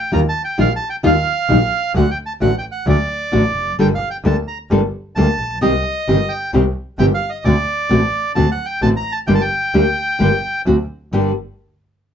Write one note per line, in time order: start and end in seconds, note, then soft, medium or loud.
0.00 0.11 G5 medium
0.12 0.31 D#2 loud
0.12 0.21 D#3 medium
0.12 0.21 G3 medium
0.12 0.21 D#4 loud
0.12 0.21 F4 medium
0.12 0.20 A#5 loud
0.29 0.42 A5 loud
0.44 0.58 G5 medium
0.58 0.77 A#1 medium
0.58 0.67 D#3 medium
0.58 0.67 G3 medium
0.58 0.67 D#4 medium
0.58 0.67 F4 loud
0.58 0.73 F5 medium
0.76 0.89 A5 loud
0.90 0.96 G5 medium
1.03 1.23 D#2 loud
1.03 1.12 D#3 medium
1.03 1.12 G3 medium
1.03 1.13 D#4 loud
1.03 1.13 F4 loud
1.03 1.92 F5 loud
1.49 1.68 A#1 loud
1.49 1.58 D#3 medium
1.49 1.58 G3 medium
1.49 1.58 D#4 medium
1.49 1.59 F4 medium
1.94 2.14 D2 loud
1.94 2.04 D3 medium
1.94 2.04 A3 medium
1.94 2.05 D4 loud
1.94 2.05 F#4 medium
1.94 2.10 F#5 medium
2.11 2.18 G5 medium
2.26 2.33 A5 medium
2.41 2.60 A1 medium
2.41 2.50 D3 medium
2.41 2.50 A3 medium
2.41 2.50 D4 medium
2.41 2.50 F#4 medium
2.41 2.55 F#5 medium
2.58 2.65 G5 medium
2.72 2.86 F#5 medium
2.86 3.06 D2 loud
2.86 2.96 D3 medium
2.86 2.96 A3 medium
2.86 2.96 D4 loud
2.86 2.96 F#4 medium
2.86 3.76 D5 medium
3.32 3.52 A1 medium
3.32 3.41 D3 medium
3.32 3.42 A3 medium
3.32 3.42 D4 medium
3.32 3.42 F#4 medium
3.55 3.78 F1 medium
3.79 3.98 G1 medium
3.79 3.88 D3 medium
3.79 3.88 G3 medium
3.79 3.88 A#3 medium
3.79 3.88 D4 medium
3.79 3.88 A4 medium
3.79 3.87 G5 medium
3.95 4.09 F5 medium
4.10 4.17 G5 medium
4.24 4.44 D2 medium
4.24 4.34 D3 medium
4.24 4.34 G3 medium
4.24 4.34 A#3 medium
4.24 4.34 D4 medium
4.24 4.34 A4 medium
4.24 4.37 A5 medium
4.48 4.58 A#5 medium
4.70 4.90 G1 medium
4.70 4.80 D3 medium
4.70 4.80 G3 medium
4.70 4.80 A#3 medium
4.70 4.80 D4 medium
4.70 4.80 A4 loud
5.15 5.36 D2 loud
5.15 5.26 D3 medium
5.15 5.26 G3 medium
5.15 5.26 A#3 medium
5.15 5.26 D4 medium
5.15 5.26 A4 loud
5.15 5.58 A5 loud
5.40 5.62 A#1 medium
5.61 5.82 C2 medium
5.61 5.71 C3 medium
5.61 5.71 D#3 loud
5.61 5.71 G3 loud
5.61 5.71 C4 loud
5.61 5.71 G4 loud
5.61 6.33 D#5 loud
6.08 6.27 G1 medium
6.08 6.17 C3 medium
6.08 6.17 D#3 medium
6.08 6.17 G3 medium
6.08 6.17 C4 medium
6.08 6.17 G4 medium
6.29 6.51 G5 medium
6.53 6.73 C2 loud
6.53 6.62 C3 medium
6.53 6.63 D#3 medium
6.53 6.63 G3 loud
6.53 6.63 C4 loud
6.53 6.63 G4 medium
6.99 7.18 G1 loud
6.99 7.08 C3 medium
6.99 7.08 D#3 medium
6.99 7.09 G3 loud
6.99 7.08 C4 medium
6.99 7.09 G4 medium
6.99 7.06 G5 medium
7.14 7.30 F5 medium
7.30 7.44 D#5 medium
7.45 7.64 D2 loud
7.45 7.54 D3 medium
7.45 7.54 A3 medium
7.45 7.54 C4 loud
7.45 7.55 F#4 loud
7.45 8.32 D5 loud
7.89 8.10 A1 medium
7.89 7.99 D3 medium
7.89 8.00 A3 medium
7.89 8.00 C4 medium
7.89 8.00 F#4 medium
8.35 8.56 D2 loud
8.35 8.45 D3 medium
8.35 8.45 A3 medium
8.35 8.45 C4 medium
8.35 8.46 F#4 medium
8.35 8.50 A5 medium
8.52 8.66 F#5 medium
8.66 8.80 G5 loud
8.82 9.01 A1 loud
8.82 8.91 D3 medium
8.82 8.91 A3 medium
8.82 8.91 C4 medium
8.82 8.92 F#4 loud
8.82 8.89 A5 loud
8.97 9.13 A#5 loud
9.12 9.19 A5 medium
9.27 9.47 G1 loud
9.27 9.37 D3 medium
9.27 9.37 G3 medium
9.27 9.37 A#3 medium
9.27 9.37 D4 medium
9.27 9.37 G4 medium
9.27 9.34 G5 loud
9.35 9.42 A5 medium
9.41 10.62 G5 loud
9.74 9.93 D2 medium
9.74 9.83 D3 medium
9.74 9.83 G3 medium
9.74 9.83 A#3 medium
9.74 9.83 D4 loud
9.74 9.84 G4 medium
10.19 10.39 G1 medium
10.19 10.28 D3 medium
10.19 10.29 G3 medium
10.19 10.29 A#3 medium
10.19 10.29 D4 medium
10.19 10.29 G4 loud
10.66 10.85 D2 medium
10.66 10.75 D3 medium
10.66 10.75 A3 medium
10.66 10.75 C4 medium
10.66 10.76 F#4 loud
11.12 11.31 G1 medium
11.12 11.31 G2 medium
11.12 11.31 D3 loud
11.12 11.31 G3 medium
11.12 11.31 A#3 medium
11.12 11.31 D4 medium
11.12 11.32 G4 medium